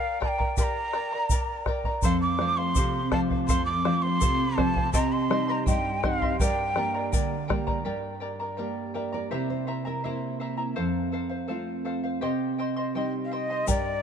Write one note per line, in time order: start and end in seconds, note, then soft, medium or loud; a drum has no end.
0.00 0.20 A#4 medium
0.00 0.20 D5 medium
0.00 0.19 F5 medium
0.00 0.19 G5 medium
0.00 0.21 A#5 medium
0.20 0.38 A#4 medium
0.20 0.38 D5 medium
0.20 0.39 G5 medium
0.20 0.29 A5 medium
0.20 0.37 A#5 medium
0.20 bombo rim medium
0.20 bombo low medium
0.28 0.56 G5 medium
0.38 0.57 A#4 soft
0.38 0.57 D5 soft
0.38 0.57 A#5 medium
0.38 bombo low medium
0.57 0.94 G4 medium
0.57 0.93 A#4 medium
0.57 0.94 D5 medium
0.57 0.92 G5 medium
0.57 0.94 A#5 medium
0.57 0.64 C6 medium
0.57 bombo low medium
0.57 shaker medium
0.63 1.64 A#5 medium
0.93 1.12 A#4 medium
0.93 1.12 D5 medium
0.93 1.12 G5 medium
0.93 1.11 A#5 medium
0.93 bombo rim soft
1.12 1.30 A#4 soft
1.12 1.30 D5 soft
1.12 1.31 A#5 medium
1.29 1.66 A#4 medium
1.29 1.67 D5 medium
1.29 1.66 G5 medium
1.29 1.68 A#5 medium
1.29 bombo low medium
1.29 shaker medium
1.66 1.85 A#4 medium
1.66 1.85 D5 medium
1.66 1.85 G5 medium
1.66 1.84 A#5 medium
1.66 bombo rim medium
1.66 bombo low medium
1.84 2.04 A#4 soft
1.84 2.04 D5 soft
1.84 2.03 A#5 medium
1.84 bombo low medium
2.02 2.74 F2 medium
2.02 2.39 A4 medium
2.02 2.40 C5 medium
2.02 2.40 F5 medium
2.02 2.20 C6 loud
2.02 bombo low medium
2.02 shaker medium
2.22 2.59 D6 medium
2.39 2.97 F3 medium
2.39 2.98 A3 soft
2.39 2.98 C4 medium
2.39 2.58 A4 medium
2.39 2.58 C5 medium
2.39 2.57 F5 medium
2.39 bombo rim soft
2.57 2.75 C5 soft
2.57 2.76 F5 medium
2.57 3.11 C6 loud
2.75 3.47 C3 medium
2.75 3.11 A4 medium
2.75 3.12 C5 medium
2.75 3.13 F5 medium
2.75 bombo low medium
2.75 shaker medium
3.12 3.70 F3 soft
3.12 3.71 A3 soft
3.12 3.71 C4 medium
3.12 3.31 A4 medium
3.12 3.30 C5 medium
3.12 3.29 F5 medium
3.12 3.20 A5 medium
3.12 bombo rim medium
3.12 bombo low medium
3.30 3.48 C5 soft
3.30 3.49 F5 medium
3.30 bombo low medium
3.47 4.19 F2 medium
3.47 3.84 A4 medium
3.47 3.85 C5 medium
3.47 3.85 F5 medium
3.47 3.65 C6 medium
3.47 bombo low medium
3.47 shaker medium
3.65 4.04 D6 medium
3.85 4.43 F3 medium
3.85 4.44 A3 soft
3.85 4.44 C4 medium
3.85 4.03 A4 medium
3.85 4.04 C5 medium
3.85 4.03 F5 medium
3.85 bombo rim medium
4.02 4.21 C5 soft
4.02 4.21 F5 soft
4.02 4.58 C6 loud
4.21 4.92 C3 medium
4.21 4.56 A4 medium
4.21 4.57 C5 medium
4.21 4.58 F5 medium
4.21 bombo low medium
4.21 shaker medium
4.57 4.86 F3 soft
4.57 4.87 A3 soft
4.57 4.87 C4 medium
4.57 4.76 A4 medium
4.57 4.76 C5 medium
4.57 4.75 F5 medium
4.57 4.92 A5 medium
4.57 bombo rim medium
4.57 bombo low medium
4.76 4.93 C5 soft
4.76 4.93 F5 medium
4.76 bombo low medium
4.93 5.65 C3 medium
4.93 5.30 G4 medium
4.93 5.30 C5 medium
4.93 5.30 D#5 medium
4.93 5.29 G5 medium
4.93 5.14 A#5 medium
4.93 5.31 C6 medium
4.93 bombo low medium
4.93 shaker medium
5.12 5.52 C6 medium
5.30 5.88 G3 medium
5.30 5.88 C4 soft
5.30 5.89 D#4 medium
5.30 5.48 C5 medium
5.30 5.48 D#5 medium
5.30 5.49 G5 medium
5.30 5.47 C6 medium
5.30 bombo rim medium
5.48 5.65 C5 soft
5.48 5.66 D#5 medium
5.48 5.67 A#5 medium
5.48 5.66 C6 medium
5.66 6.38 G2 medium
5.66 6.03 C5 medium
5.66 6.04 D#5 medium
5.66 6.03 G5 medium
5.66 6.05 G5 medium
5.66 6.04 C6 medium
5.66 bombo low medium
5.66 shaker medium
6.04 6.33 G3 medium
6.04 6.33 C4 soft
6.04 6.33 D#4 medium
6.04 6.22 C5 medium
6.04 6.21 D#5 medium
6.04 6.39 F5 medium
6.04 6.22 G5 medium
6.04 6.21 C6 medium
6.04 bombo rim medium
6.04 bombo low medium
6.22 6.40 C5 soft
6.22 6.40 D#5 soft
6.22 6.40 C6 medium
6.22 bombo low medium
6.40 7.10 G2 medium
6.40 6.76 G4 medium
6.40 6.76 A#4 medium
6.40 6.76 D5 medium
6.40 7.09 G5 medium
6.40 6.75 G5 medium
6.40 6.77 A#5 medium
6.40 bombo low medium
6.40 shaker medium
6.76 7.34 G3 soft
6.76 7.34 A#3 soft
6.76 7.35 D4 medium
6.76 6.95 A#4 medium
6.76 6.94 D5 medium
6.76 6.94 G5 medium
6.76 6.93 A#5 medium
6.76 bombo rim medium
6.94 7.12 A#4 soft
6.94 7.12 D5 soft
6.94 7.13 A#5 medium
7.12 7.83 D3 medium
7.12 7.47 A#4 medium
7.12 7.48 D5 medium
7.12 7.47 G5 medium
7.12 7.48 A#5 medium
7.12 bombo low medium
7.12 shaker medium
7.48 7.78 G3 soft
7.48 7.79 A#3 soft
7.48 7.79 D4 soft
7.48 7.66 A#4 medium
7.48 7.66 D5 medium
7.48 7.67 G5 medium
7.48 7.66 A#5 medium
7.48 bombo rim medium
7.48 bombo low medium
7.67 7.84 A#4 soft
7.67 7.84 D5 medium
7.67 7.84 A#5 medium
7.67 bombo low medium
7.85 9.27 G2 medium
7.85 8.21 G4 medium
7.85 8.20 A#4 medium
7.85 8.20 D5 medium
7.85 8.19 G5 medium
7.85 8.21 A#5 medium
8.20 8.40 A#4 medium
8.20 8.39 D5 medium
8.20 8.39 G5 soft
8.20 8.38 A#5 medium
8.40 8.57 A#4 soft
8.40 8.57 D5 soft
8.40 8.58 A#5 soft
8.57 9.29 G3 soft
8.57 9.29 A#3 soft
8.57 9.29 D4 soft
8.57 8.93 A#4 medium
8.57 8.94 D5 medium
8.57 8.93 G5 medium
8.57 8.94 A#5 medium
8.94 9.13 A#4 medium
8.94 9.12 D5 medium
8.94 9.12 E5 medium
8.94 9.13 G5 soft
8.94 9.11 A#5 medium
9.12 9.31 A#4 soft
9.12 9.31 D5 soft
9.12 9.30 D5 medium
9.12 9.31 A#5 medium
9.31 10.73 C3 medium
9.31 9.66 E4 medium
9.31 9.67 G4 medium
9.31 9.66 C5 medium
9.31 9.67 E5 medium
9.31 9.49 E5 medium
9.31 9.67 A#5 medium
9.50 9.84 C5 medium
9.67 9.85 E4 medium
9.67 9.85 C5 medium
9.67 9.85 E5 medium
9.67 9.84 A#5 medium
9.85 10.03 E4 soft
9.85 10.03 A#4 medium
9.85 10.03 E5 soft
9.85 10.04 A#5 medium
10.04 10.75 A#3 soft
10.04 10.75 C4 soft
10.04 10.39 E4 medium
10.04 10.76 E4 soft
10.04 10.74 A#4 medium
10.04 10.39 C5 medium
10.04 10.40 E5 medium
10.04 10.40 A#5 medium
10.40 10.57 E4 medium
10.40 10.58 C5 medium
10.40 10.57 E5 medium
10.40 10.56 A#5 medium
10.57 10.75 E4 soft
10.57 10.76 E5 soft
10.57 10.76 A#5 soft
10.76 12.19 F2 medium
10.76 11.11 A4 medium
10.76 11.12 C5 medium
10.76 11.13 F5 medium
11.12 11.31 A4 medium
11.12 11.29 C5 medium
11.12 11.28 F5 medium
11.29 11.47 C5 soft
11.29 11.48 F5 medium
11.48 12.20 A3 soft
11.48 12.21 C4 soft
11.48 12.21 F4 soft
11.48 11.83 A4 medium
11.48 11.84 C5 medium
11.48 11.85 F5 medium
11.85 12.04 A4 medium
11.85 12.03 C5 medium
11.85 12.02 F5 medium
12.04 12.21 C5 soft
12.04 12.21 F5 medium
12.21 13.64 C3 medium
12.21 12.58 G4 medium
12.21 12.58 C5 medium
12.21 12.58 D#5 medium
12.21 12.57 G5 medium
12.21 12.59 C6 medium
12.58 12.77 C5 medium
12.58 12.76 D#5 medium
12.58 12.77 G5 medium
12.58 12.75 C6 medium
12.76 12.94 C5 soft
12.76 12.95 D#5 soft
12.76 12.95 C6 medium
12.95 13.66 G3 soft
12.95 13.66 C4 soft
12.95 13.66 D#4 soft
12.95 13.31 C5 medium
12.95 13.31 D#5 medium
12.95 13.30 G5 medium
12.95 13.32 C6 medium
13.25 13.34 F5 medium
13.31 13.50 C5 medium
13.31 13.50 D#5 medium
13.31 13.69 D#5 medium
13.31 13.50 G5 medium
13.31 13.49 C6 medium
13.50 13.67 C5 soft
13.50 13.67 D#5 soft
13.50 13.67 C6 soft
13.67 14.02 G2 medium
13.67 14.02 G4 medium
13.67 14.02 A#4 medium
13.67 14.02 D5 medium
13.67 14.02 G5 medium
13.67 14.02 A#5 medium
13.67 bombo low medium
13.67 shaker medium